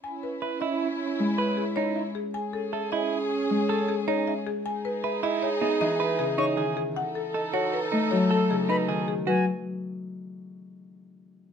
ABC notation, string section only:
X:1
M:6/4
L:1/8
Q:1/4=156
K:Bmix
V:1 name="String section"
[CE]8- [CE]3 z | [CG]8- [CG]3 z | [DG]8- [DG]3 z | [DA]8- [DA]3 z |
z12 |]